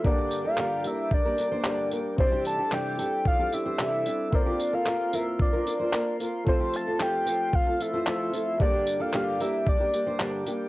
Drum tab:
TB |-x-x-x-x|-x-x-x-x|-x-x-x-x|-x-x-x-x|
CP |--x---x-|--x---x-|--x---x-|--x---x-|
BD |o---o---|o---o---|o---o---|o---o---|

TB |-x-x-x-x|
CP |--x---x-|
BD |o---o---|